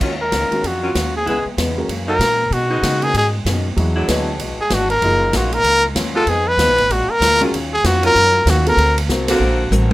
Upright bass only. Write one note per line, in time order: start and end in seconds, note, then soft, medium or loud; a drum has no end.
0.00 0.31 D#2 medium
0.32 0.50 C#2 medium
0.51 muted upright bass stroke soft
0.63 0.94 F2 medium
0.95 1.25 D#2 medium
1.26 1.44 C#2 medium
1.45 muted upright bass stroke soft
1.57 1.88 E2 medium
1.88 2.18 F#2 medium
2.19 2.50 A#2 medium
2.50 2.82 B2 medium
2.83 3.13 C#3 medium
3.14 3.44 G#2 medium
3.45 3.76 F#2 medium
3.77 4.07 E2 medium
4.08 4.38 D2 medium
4.39 4.57 B1 medium
4.58 muted upright bass stroke soft
4.70 5.01 G#1 medium
5.01 5.32 F#1 medium
5.33 5.63 A#1 medium
5.63 5.94 C#2 medium
5.95 6.26 D#2 medium
6.26 6.56 F2 medium
6.57 6.68 D#2 medium
6.68 6.77 B1 medium
6.78 6.88 G#1 medium
6.89 7.07 A#1 medium
7.08 muted upright bass stroke soft
7.20 7.51 D2 medium
7.52 7.83 D#2 medium
7.84 8.14 F2 medium
8.15 8.45 F#2 medium
8.46 8.76 D#2 medium
8.77 9.07 D2 medium
9.08 9.39 C2 medium
9.39 9.70 A#1 medium
9.71 9.93 A1 medium